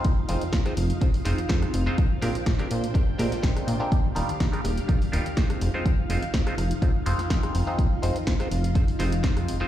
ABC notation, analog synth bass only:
X:1
M:4/4
L:1/16
Q:1/4=124
K:Fdor
V:1 name="Analog synth bass" clef=bass
F,, z F,,, F,, F,, z F,,, z F,, z F,,, F,, F,, z F,,, z | B,,, z B,, B,,, B,,, z B,, z B,,, z B,, B,,, B,,, z B,, z | E,, z E,,, E,, E,, z E,,, z E,, z E,,, E,, E,, z F,,, z | F,, z F,,, F,, F,, z F,,, z F,, z F,,, F,, F,, z F,,, z |
F,, z F,,, F,, F,, z F,,,2 F,, z F,,,2 F,,2 F,,, z |]